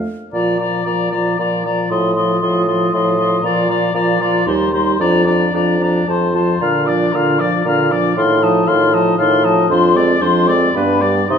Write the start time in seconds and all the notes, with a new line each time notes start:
0.33 A#2 F3 F4 D5 A#5
0.59 F3 F4 D5 A#5
0.85 A#2 F3 F4 D5 A#5
1.11 F3 F4 D5 A#5
1.37 A#2 F3 F4 D5 A#5
1.63 F3 F4 D5 A#5
1.90 A2 F3 F4 D#5 C6
2.15 F3 F4 D#5 C6
2.40 A2 F3 F4 D#5 C6
2.66 F3 F4 D#5 C6
2.92 A2 F3 F4 D#5 C6
3.17 F3 F4 D#5 C6
3.42 A#2 F3 F4 D5 A#5
3.68 F3 F4 D5 A#5
3.94 A#2 F3 F4 D5 A#5
4.19 F3 F4 D5 A#5
4.45 D#2 G3 D#4 C5 C6
4.73 G3 D#4 C5 C6
4.99 F2 F3 D4 D5 A#5
5.26 F3 D4 D5 A#5
5.53 F2 F3 D4 D5 A#5
5.79 F3 D4 A#5
5.83 D5
6.07 F2 F3 F4 C5 A5
6.33 F3 F4 C5 A5
6.59 A#2 D3 F4 F5 A#5
6.86 F3 D4 D5 D6
7.12 A#2 D3 F4 F5 A#5
7.38 F3 D4 D5 D6
7.64 A#2 D3 F4 F5 A#5
7.91 F3 D4 D5 D6
8.16 A2 D#3 F4 F5 C6
8.42 F3 D#4 D#5 A5
8.67 A2 D#3 F4 F5 C6
8.93 F3 D#4 D#5 A5
9.17 A2 D#3 F4 F5 C6
9.44 F3 D#4 D#5 A5
9.69 F2 F3 D4 C5 C6
9.95 G#3 C4 D5 D6
10.21 F2 F3 D4 C5 C6
10.47 G#3 C4 D5 D6
10.74 G2 B3 D4 B4 B5
11.00 G3 B3 D5 D6
11.28 C3 D#3 D#4 D#5 C6